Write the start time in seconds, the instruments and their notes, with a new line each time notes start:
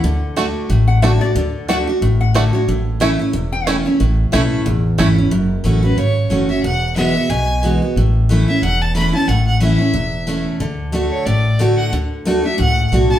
Already playing: resonator guitar played with a steel bar F#5
0.03 upright bass D2, steel-string acoustic guitar D3
0.36 steel-string acoustic guitar D3 A3 D4 F#4, five-string banjo A3 D4 F#4
0.69 upright bass A1, steel-string acoustic guitar A2
0.88 resonator guitar played with a steel bar F#5
1.02 steel-string acoustic guitar D3 A3 D4 F#4, five-string banjo A3 D4 F#4, resonator guitar played with a steel bar E5
1.21 steel-string acoustic guitar D4 F#4, resonator guitar played with a steel bar D5
1.35 upright bass D2, steel-string acoustic guitar D3
1.68 steel-string acoustic guitar D3 A3 D4 F#4, five-string banjo A3 D4 F#4, resonator guitar played with a steel bar F#5
1.87 steel-string acoustic guitar D4 F#4
2.02 upright bass A1, steel-string acoustic guitar A2
2.21 resonator guitar played with a steel bar F#5
2.34 steel-string acoustic guitar D3 A3 D4 F#4, five-string banjo A3 D4 F#4, resonator guitar played with a steel bar E5
2.53 steel-string acoustic guitar D4 F#4, resonator guitar played with a steel bar C#5
2.68 upright bass A1, steel-string acoustic guitar A2
3.00 steel-string acoustic guitar E3 A3 C#4 E4, five-string banjo A3 C#4 E4, resonator guitar played with a steel bar E5
3.19 steel-string acoustic guitar C#4 E4
3.33 upright bass E1, steel-string acoustic guitar E2
3.52 resonator guitar played with a steel bar G5
3.67 steel-string acoustic guitar E3 A3 C#4 E4, five-string banjo A3 C#4 E4, resonator guitar played with a steel bar E5
3.85 steel-string acoustic guitar C#4 E4, resonator guitar played with a steel bar C#5
4.00 upright bass A1, steel-string acoustic guitar A2
4.32 upright bass B1, steel-string acoustic guitar E3 A3 C#4 E4, five-string banjo A3 C#4 E4, resonator guitar played with a steel bar E5
4.66 upright bass A1, steel-string acoustic guitar E2
4.98 upright bass G#1, steel-string acoustic guitar E3 A3 C#4 E4, five-string banjo A3 C#4 E4
5.16 steel-string acoustic guitar C#4 E4
5.31 upright bass F#1, steel-string acoustic guitar F#2
5.64 upright bass A1, steel-string acoustic guitar E3 A3 C#4 F#4
5.83 steel-string acoustic guitar C#4 F#4, fiddle B4
5.97 upright bass G#1, steel-string acoustic guitar C#3, fiddle C#5
6.30 upright bass F#1, steel-string acoustic guitar E3 A3 C#4 F#4
6.49 steel-string acoustic guitar C#4 F#4, fiddle E5
6.63 upright bass E1, steel-string acoustic guitar E2, fiddle F#5
6.96 steel-string acoustic guitar E3 G#3 B3 F#4, fiddle E5
7.15 steel-string acoustic guitar B3 F#4
7.30 upright bass B1, steel-string acoustic guitar B2, fiddle G#5
7.63 steel-string acoustic guitar E3 G#3 B3 F#4
7.82 steel-string acoustic guitar B3 F#4
7.96 upright bass A1, steel-string acoustic guitar A2
8.29 steel-string acoustic guitar E3 A3 C#4 E4
8.48 steel-string acoustic guitar C#4 E4, fiddle E5
8.59 upright bass E1, fiddle E5 F#5
8.63 steel-string acoustic guitar E2
8.82 fiddle A5
8.95 steel-string acoustic guitar E3 A3 C#4 E4, fiddle B5
9.13 steel-string acoustic guitar C#4 E4, fiddle A5
9.27 upright bass A1, steel-string acoustic guitar A2, fiddle F#5
9.47 fiddle F#5
9.60 steel-string acoustic guitar E3 A3 C#4 E4, fiddle E5
9.79 steel-string acoustic guitar C#4 E4
9.94 upright bass E1, steel-string acoustic guitar E2
10.27 steel-string acoustic guitar E3 A3 C#4 E4
10.60 upright bass D2, steel-string acoustic guitar D3
10.92 steel-string acoustic guitar D3 A3 D4 F#4
11.11 fiddle C#5
11.26 upright bass A1, steel-string acoustic guitar A2, fiddle D5
11.59 steel-string acoustic guitar D3 A3 D4 F#4
11.78 fiddle F#5
11.92 upright bass D2, steel-string acoustic guitar D3
12.25 steel-string acoustic guitar D3 A3 D4 F#4
12.43 steel-string acoustic guitar D4 F#4, fiddle E5
12.58 upright bass C#2, steel-string acoustic guitar A2, fiddle F#5
12.92 upright bass B1, steel-string acoustic guitar D3 A3 D4 F#4
13.10 steel-string acoustic guitar D4 F#4, fiddle A5